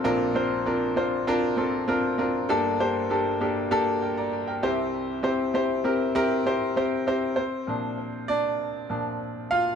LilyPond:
<<
  \new Staff \with { instrumentName = "Grand piano" } { \time 4/4 \key bes \lydian \tempo 4 = 98 << { r1 | r2 r8 <bes' g''>16 <d'' bes''>8 <bes' g''>8 r16 | r1 | <c' c''>4. <d' d''>2 <f' f''>8 | } \\ { <c' d' f' bes'>8 <c' d' f' c''>8 <c' d' f' bes'>8 <c' d' f' c''>8 <c' d' f' bes'>8 <c' d' f' a'>8 <c' d' f' bes'>8 <c' d' f' bes'>8 | <bes d' g' a'>8 <bes d' g' c''>8 <bes d' g' a'>8 <bes d' g' a'>8 <bes d' g' a'>8 r4 <c' e' g' c''>8~ | <c' e' g' c''>8 <c' e' g' c''>8 <c' e' g' c''>8 <c' e' g' bes'>8 <c' e' g' bes'>8 <c' e' g' c''>8 <c' e' g' c''>8 <c' e' g' c''>8 | r1 | } >> }
  \new Staff \with { instrumentName = "Grand piano" } { \clef bass \time 4/4 \key bes \lydian <bes,, bes,>1 | <g,, g,>2.~ <g,, g,>8 <c, c>8~ | <c, c>2.~ <c, c>8 r8 | r8 <bes, f d'>8 r4. <bes, f d'>8 r4 | }
>>